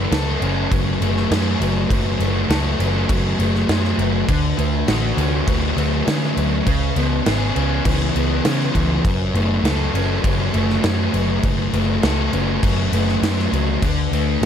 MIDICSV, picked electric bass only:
0, 0, Header, 1, 2, 480
1, 0, Start_track
1, 0, Key_signature, 3, "minor"
1, 0, Tempo, 595829
1, 1535, Time_signature, 4, 2, 24, 8
1, 11645, End_track
2, 0, Start_track
2, 0, Title_t, "Picked electric bass"
2, 0, Program_c, 0, 34
2, 93, Note_on_c, 0, 37, 100
2, 283, Note_off_c, 0, 37, 0
2, 335, Note_on_c, 0, 30, 98
2, 525, Note_off_c, 0, 30, 0
2, 577, Note_on_c, 0, 30, 100
2, 766, Note_off_c, 0, 30, 0
2, 810, Note_on_c, 0, 30, 78
2, 1001, Note_off_c, 0, 30, 0
2, 1054, Note_on_c, 0, 42, 100
2, 1244, Note_off_c, 0, 42, 0
2, 1290, Note_on_c, 0, 30, 100
2, 1481, Note_off_c, 0, 30, 0
2, 1534, Note_on_c, 0, 30, 93
2, 1723, Note_off_c, 0, 30, 0
2, 1768, Note_on_c, 0, 30, 91
2, 1960, Note_off_c, 0, 30, 0
2, 2010, Note_on_c, 0, 37, 91
2, 2201, Note_off_c, 0, 37, 0
2, 2252, Note_on_c, 0, 30, 96
2, 2442, Note_off_c, 0, 30, 0
2, 2489, Note_on_c, 0, 30, 97
2, 2680, Note_off_c, 0, 30, 0
2, 2731, Note_on_c, 0, 30, 80
2, 2921, Note_off_c, 0, 30, 0
2, 2971, Note_on_c, 0, 42, 89
2, 3161, Note_off_c, 0, 42, 0
2, 3206, Note_on_c, 0, 30, 94
2, 3398, Note_off_c, 0, 30, 0
2, 3450, Note_on_c, 0, 38, 91
2, 3641, Note_off_c, 0, 38, 0
2, 3694, Note_on_c, 0, 38, 93
2, 3883, Note_off_c, 0, 38, 0
2, 3928, Note_on_c, 0, 33, 98
2, 4119, Note_off_c, 0, 33, 0
2, 4167, Note_on_c, 0, 38, 96
2, 4358, Note_off_c, 0, 38, 0
2, 4411, Note_on_c, 0, 38, 101
2, 4601, Note_off_c, 0, 38, 0
2, 4645, Note_on_c, 0, 38, 81
2, 4837, Note_off_c, 0, 38, 0
2, 4892, Note_on_c, 0, 50, 89
2, 5081, Note_off_c, 0, 50, 0
2, 5130, Note_on_c, 0, 38, 89
2, 5320, Note_off_c, 0, 38, 0
2, 5368, Note_on_c, 0, 37, 93
2, 5559, Note_off_c, 0, 37, 0
2, 5607, Note_on_c, 0, 37, 90
2, 5799, Note_off_c, 0, 37, 0
2, 5850, Note_on_c, 0, 32, 97
2, 6040, Note_off_c, 0, 32, 0
2, 6088, Note_on_c, 0, 37, 86
2, 6279, Note_off_c, 0, 37, 0
2, 6324, Note_on_c, 0, 37, 97
2, 6517, Note_off_c, 0, 37, 0
2, 6569, Note_on_c, 0, 37, 83
2, 6759, Note_off_c, 0, 37, 0
2, 6807, Note_on_c, 0, 49, 85
2, 6999, Note_off_c, 0, 49, 0
2, 7046, Note_on_c, 0, 37, 89
2, 7238, Note_off_c, 0, 37, 0
2, 7290, Note_on_c, 0, 30, 84
2, 7480, Note_off_c, 0, 30, 0
2, 7526, Note_on_c, 0, 30, 83
2, 7718, Note_off_c, 0, 30, 0
2, 7763, Note_on_c, 0, 37, 96
2, 7956, Note_off_c, 0, 37, 0
2, 8004, Note_on_c, 0, 30, 86
2, 8197, Note_off_c, 0, 30, 0
2, 8249, Note_on_c, 0, 30, 105
2, 8440, Note_off_c, 0, 30, 0
2, 8492, Note_on_c, 0, 30, 91
2, 8682, Note_off_c, 0, 30, 0
2, 8733, Note_on_c, 0, 42, 93
2, 8923, Note_off_c, 0, 42, 0
2, 8971, Note_on_c, 0, 30, 99
2, 9162, Note_off_c, 0, 30, 0
2, 9213, Note_on_c, 0, 30, 91
2, 9403, Note_off_c, 0, 30, 0
2, 9452, Note_on_c, 0, 30, 93
2, 9643, Note_off_c, 0, 30, 0
2, 9695, Note_on_c, 0, 37, 95
2, 9885, Note_off_c, 0, 37, 0
2, 9934, Note_on_c, 0, 30, 91
2, 10125, Note_off_c, 0, 30, 0
2, 10175, Note_on_c, 0, 30, 97
2, 10365, Note_off_c, 0, 30, 0
2, 10410, Note_on_c, 0, 30, 88
2, 10603, Note_off_c, 0, 30, 0
2, 10653, Note_on_c, 0, 42, 84
2, 10845, Note_off_c, 0, 42, 0
2, 10892, Note_on_c, 0, 37, 95
2, 11085, Note_off_c, 0, 37, 0
2, 11137, Note_on_c, 0, 38, 92
2, 11327, Note_off_c, 0, 38, 0
2, 11371, Note_on_c, 0, 38, 90
2, 11565, Note_off_c, 0, 38, 0
2, 11613, Note_on_c, 0, 33, 97
2, 11645, Note_off_c, 0, 33, 0
2, 11645, End_track
0, 0, End_of_file